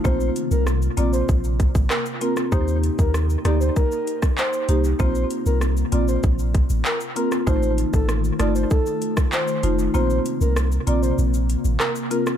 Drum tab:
HH |--x---x---x---x-|--x---x---x---x-|--x---x---x---x-|--x---x---x---x-|
SH |xxxxxxxxxxxxxxxx|xxxxxxxxxxxxxxxx|xxxxxxxxxxxxxxxx|xxxxxxxxxxxxxxxx|
CP |------------x---|------------x---|------------x---|------------x---|
SD |----r-------r--r|----r-r----r----|----r----------r|----r-r----r----|
BD |o-------o-oo----|o--o----o--o----|o-------o-o-----|o--o----o--o----|

HH |--x---x---x---x-|
SH |xxxxxxxxxxxxxxxx|
CP |------------x---|
SD |----r-------r--r|
BD |----------------|